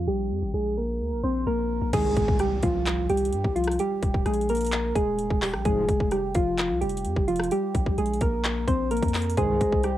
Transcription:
0.07 808-style bass A#1, synth keys G3 G4
0.31 808-style bass F2
0.42 808-style bass G#1
0.54 808-style bass A#1, synth keys G#3 G#4
0.77 synth keys A#3 A#4
1.00 808-style bass D2
1.12 808-style bass A#1
1.23 808-style bass A#1, synth keys C4 C5
1.47 808-style bass A#1, synth keys A#3 A#4
1.82 808-style bass A#1
1.93 analog polysynth C2 G2 D#3, 808-style bass C2, synth keys G#3 G#4, kick, closed hi-hat, crash, impact
2.17 808-style bass C2, kick, closed hi-hat
2.28 kick
2.39 synth keys G3 G4, cross-stick, closed hi-hat
2.63 808-style bass C2, synth keys F3 F4, kick, closed hi-hat
2.86 clap, closed hi-hat
3.10 808-style bass C2, synth keys G3 G4, closed hi-hat
3.17 closed hi-hat
3.25 closed hi-hat
3.33 808-style bass G2, closed hi-hat
3.44 808-style bass C2, kick
3.56 synth keys F3 F4, closed hi-hat
3.64 cross-stick, closed hi-hat
3.71 closed hi-hat
3.79 synth keys G3 G4, closed hi-hat
4.03 808-style bass D#1, kick, closed hi-hat
4.14 kick
4.26 808-style bass A#1, synth keys G#3 G#4, cross-stick, closed hi-hat
4.34 closed hi-hat
4.41 closed hi-hat
4.49 synth keys A#3 A#4, closed hi-hat
4.55 closed hi-hat
4.57 closed hi-hat
4.61 closed hi-hat
4.65 closed hi-hat
4.67 closed hi-hat
4.72 clap, closed hi-hat
4.95 808-style bass D#1, synth keys G#3 G#4, kick, closed hi-hat
5.19 closed hi-hat
5.30 808-style bass D#1, kick
5.42 synth keys G3 G4, clap, open hi-hat
5.54 808-style bass A#1, cross-stick
5.65 808-style bass F1, analog polysynth C2 G#2 F3, synth keys G#3 G#4, kick, closed hi-hat
5.89 808-style bass F1, kick, closed hi-hat
6.00 kick
6.11 synth keys G3 G4, cross-stick, closed hi-hat
6.35 808-style bass F1, synth keys F3 F4, kick, closed hi-hat
6.58 clap, closed hi-hat
6.70 808-style bass C2
6.81 808-style bass F1, synth keys G3 G4, closed hi-hat
6.89 closed hi-hat
6.97 closed hi-hat
7.05 808-style bass F2, closed hi-hat
7.16 808-style bass F1, kick
7.28 synth keys F3 F4, closed hi-hat
7.36 cross-stick, closed hi-hat
7.44 closed hi-hat
7.51 synth keys G3 G4, closed hi-hat
7.75 808-style bass A#1, kick, closed hi-hat
7.86 kick
7.98 808-style bass A#1, synth keys G#3 G#4, closed hi-hat
8.06 closed hi-hat
8.13 closed hi-hat
8.21 808-style bass A#1, synth keys A#3 A#4, kick, closed hi-hat
8.44 clap, closed hi-hat
8.68 808-style bass A#1, synth keys C4 C5, kick, closed hi-hat
8.91 synth keys A#3 A#4, closed hi-hat
8.97 closed hi-hat
9.03 808-style bass F2, kick, closed hi-hat
9.08 closed hi-hat
9.14 clap, closed hi-hat, open hi-hat
9.22 closed hi-hat
9.30 closed hi-hat
9.37 analog polysynth C2 G2 D#3, 808-style bass C2, synth keys G#3 G#4, harp C5, kick, closed hi-hat
9.60 808-style bass C2, harp D#5, kick, closed hi-hat
9.72 kick
9.83 synth keys G3 G4, harp G5, cross-stick, closed hi-hat

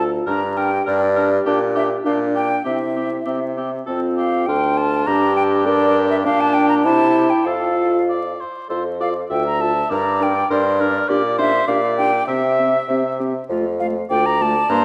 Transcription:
Already playing: bassoon D2, french horn F4, oboe A4
0.00 clarinet F4
0.26 bassoon G2, clarinet D4, french horn G4, oboe A#4, flute A#5
0.57 clarinet D4, oboe A#4, flute G5
0.86 bassoon G2, clarinet D4, oboe A#4, flute D5
1.15 clarinet D4, oboe A#4
1.46 bassoon A#2, clarinet D4, oboe G4
1.75 clarinet D4, oboe G4, flute E5
2.05 bassoon A#2, french horn D4, clarinet D4, oboe G4, flute F5
2.35 clarinet D4, oboe G4, flute G5
2.65 bassoon C3, clarinet C4, french horn E4, oboe G4, flute E5
2.96 clarinet C4, oboe G4
3.25 bassoon C3, clarinet C4, oboe G4
3.57 clarinet C4, oboe G4
3.87 bassoon F2, clarinet C4, french horn F4, oboe A4
4.17 oboe G4, flute F5
4.46 bassoon D2, clarinet D4, oboe F4, french horn A4, flute G5
4.77 flute A5
5.07 bassoon G2, clarinet D4, oboe G4, french horn G4, flute A#5
5.36 flute G5
5.66 clarinet D4, oboe G4, french horn A#4, flute D5
6.11 flute E5
6.25 bassoon A#2, french horn D4, clarinet D4, oboe G4, flute F5
6.41 flute A5
6.54 flute G5
6.69 flute A#5
6.84 bassoon C3, french horn E4, clarinet E4, oboe G4, flute A5
7.30 flute G5
7.45 bassoon F2, clarinet F4, french horn F4, oboe A4, flute F5
8.09 oboe D5
8.41 oboe C5
8.69 bassoon F2, french horn F4, clarinet A4, oboe C5
9.00 french horn F4, clarinet A4, oboe D5, flute F5
9.30 bassoon D2, french horn F4, clarinet A4, oboe E5, flute G5
9.46 flute A#5
9.60 french horn F4, clarinet A4, flute A5
9.90 bassoon G2, french horn D4, clarinet A#4, oboe D5, flute A#5
10.20 french horn D4, clarinet A#4, flute G5
10.50 bassoon G2, french horn D4, clarinet A#4, oboe C5, flute D5
10.80 french horn D4, clarinet A#4, oboe A#4
11.09 bassoon A#2, french horn D4, clarinet G4, oboe D5
11.38 french horn D4, clarinet G4, oboe C5, flute E5
11.68 bassoon A#2, french horn D4, clarinet G4, oboe D5, flute F5
11.97 french horn D4, clarinet G4, flute G5
12.27 bassoon C3, french horn C4, clarinet G4, flute E5, oboe E5
12.58 french horn C4, clarinet G4
12.88 bassoon C3, french horn C4, clarinet G4
13.19 french horn C4, clarinet G4
13.49 bassoon F2, french horn A3, clarinet F4
13.80 french horn A3, clarinet F4, flute F5
14.10 bassoon D2, french horn A3, clarinet F4, oboe D5, flute G5
14.26 flute A#5
14.40 french horn A3, clarinet F4, flute A5
14.69 bassoon G2, french horn A#3, clarinet D4, oboe C5, flute A#5

